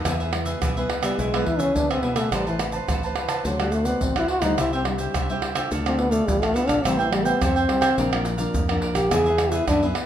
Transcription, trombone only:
0.00 0.19 D#3 medium
1.03 1.20 G3 medium
1.18 1.47 G#3 medium
1.46 1.61 E4 loud
1.59 1.77 C#4 loud
1.76 1.92 D4 loud
1.91 2.04 C4 medium
2.03 2.19 B3 medium
2.17 2.34 A3 medium
2.33 2.47 G3 medium
2.47 2.55 E3 medium
3.46 3.61 F#3 medium
3.60 3.74 G3 medium
3.72 3.87 A3 medium
3.86 4.04 B3 medium
4.02 4.18 C4 medium
4.17 4.31 E4 loud
4.30 4.44 F#4 loud
4.43 4.61 D#4 medium
4.59 4.73 E4 loud
4.74 4.82 C4 medium
5.86 6.00 C4 medium
5.99 6.14 B3 medium
6.12 6.29 A3 medium
6.28 6.44 G3 medium
6.43 6.56 A3 medium
6.54 6.69 B3 medium
6.68 6.86 D4 medium
6.84 7.00 C4 medium
6.99 7.12 E3 medium
7.11 7.26 G3 medium
7.24 7.42 B3 medium
7.41 8.26 C4 medium
8.95 9.13 G4 medium
9.12 9.54 G#4 loud
9.52 9.67 E4 medium
9.68 9.85 D4 medium

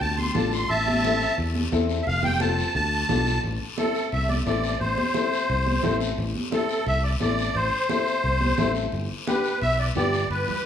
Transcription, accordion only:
0.01 0.18 A5 loud
0.17 0.34 C6 medium
0.35 0.52 A5 medium
0.53 0.69 C6 medium
0.69 1.34 E5 loud
0.69 1.36 A5 loud
2.02 2.05 E5 medium
2.07 2.23 F5 loud
2.24 2.40 G5 loud
2.41 2.73 A5 loud
2.75 3.41 A5 loud
3.78 4.10 A4 medium
4.12 4.30 E5 loud
4.29 4.36 D5 medium
4.45 4.78 D5 medium
4.80 5.96 C5 loud
6.53 6.85 A4 medium
6.87 7.03 E5 loud
7.03 7.11 D5 medium
7.21 7.56 D5 medium
7.55 8.72 C5 loud
9.28 9.59 B4 medium
9.62 9.78 E5 loud
9.79 9.87 D5 medium
9.96 10.28 D5 loud
10.30 10.66 B4 medium

